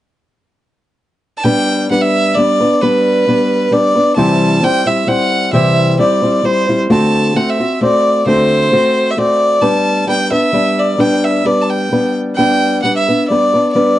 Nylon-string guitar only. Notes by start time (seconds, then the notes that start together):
1.44 G3 B3 D4 B4
1.90 G3 B3 D4 B4
2.37 G3 B3 D4 B4
2.60 B3 D4 B4
2.83 G3 B3 D4 B4
3.27 G3 B3 D4 B4
3.71 G3 B3 D4 B4
3.96 B3 D4 B4
4.17 C3 E3 G3 C4 E4 C5
4.62 G3 C4 E4 C5
4.86 G3 C4 E4 C5
5.07 G3 C4 E4 C5
5.53 C3 E3 G3 C4 E4 C5
5.98 G3 C4 E4 C5
6.22 G3 C4 E4 C5
6.43 G3 C4 E4 C5
6.68 G3 C4 E4 C5
6.90 D3 A3 C4 F#4 C5
7.35 A3 C4 F#4 C5
7.60 C4 F#4 C5
7.81 A3 C4 F#4 C5
8.26 D3 A3 C4 F#4 C5
8.71 A3 C4 F#4 C5
9.17 A3 C4 F#4 C5
9.61 G3 B3 D4 B4
10.07 G3 B3 D4 B4
10.31 B3 D4 B4
10.53 G3 B3 D4 B4
10.98 G3 B3 D4 B4
11.45 G3 B3 D4 B4
11.91 G3 B3 D4 B4
12.38 G3 B3 D4 B4
12.83 G3 B3 D4 B4
13.08 B3 D4 B4
13.30 G3 B3 D4 B4
13.54 B3 D4 B4
13.75 G3 B3 D4 B4